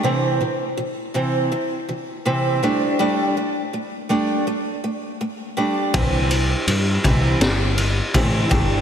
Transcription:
<<
  \new Staff \with { instrumentName = "Steel-string acoustic guitar" } { \clef bass \time 4/4 \key c \lydian \tempo 4 = 82 <c e c'>8 <c e>8 <c e>8 <c e c'>8 <c e>8 <c e>8 <c e c'>8 <g a d'>8 | <g a d'>8 <g a>8 <g a>8 <g a d'>8 <g a>8 <g a>8 <g a>8 <g a d'>8 | <c e c'>8 <c e>8 <c e>8 <c e c'>8 r8 <c e>8 <c e c'>8 <g a d'>8 | }
  \new Staff \with { instrumentName = "Picked electric bass" } { \clef bass \time 4/4 \key c \lydian r1 | r1 | c,4 g,8 c,8 g,,4 a,8 g,,8 | }
  \new DrumStaff \with { instrumentName = "Drums" } \drummode { \time 4/4 r4 r4 r4 r4 | r4 r4 r4 r4 | <bd cymr>8 cymr8 cymr8 <bd cymr>8 <cymr sn>8 cymr8 <bd cymr>8 <bd cymr>8 | }
>>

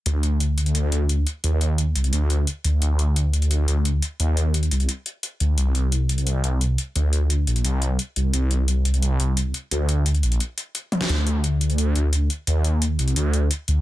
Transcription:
<<
  \new Staff \with { instrumentName = "Detuned saw bass" } { \clef bass \time 4/4 \key c \dorian \tempo 4 = 174 d,2~ d,8 d,4 r8 | ees,4. c,8 d,4 r8 d,8 | d,2~ d,8 d,4 r8 | ees,4. c,8 r4. d,8 |
c,2~ c,8 c,4 r8 | d,4. bes,,8 c,4 r8 c,8 | c,2~ c,8 c,4 r8 | d,4. bes,,8 r2 |
d,2~ d,8 d,4 r8 | ees,4. c,8 d,4 r8 d,8 | }
  \new DrumStaff \with { instrumentName = "Drums" } \drummode { \time 4/4 hh8 hh8 hh8 hh16 hh16 hh8 hh8 hh8 hh8 | hh8 hh8 hh8 hh16 hh16 hh8 hh8 hh8 hh8 | hh8 hh8 hh8 hh16 hh16 hh8 hh8 hh8 hh8 | hh8 hh8 hh16 hh16 hh16 hh16 hh8 hh8 hh8 hh8 |
hh8 hh8 hh8 hh16 hh16 hh8 hh8 hh8 hh8 | hh8 hh8 hh8 hh16 hh16 hh8 hh8 hh8 hh8 | hh8 hh8 hh8 hh16 hh16 hh8 hh8 hh8 hh8 | hh8 hh8 hh16 hh16 hh16 hh16 hh8 hh8 hh8 <hh tommh>16 <hh sn>16 |
hh8 hh8 hh8 hh16 hh16 hh8 hh8 hh8 hh8 | hh8 hh8 hh8 hh16 hh16 hh8 hh8 hh8 hh8 | }
>>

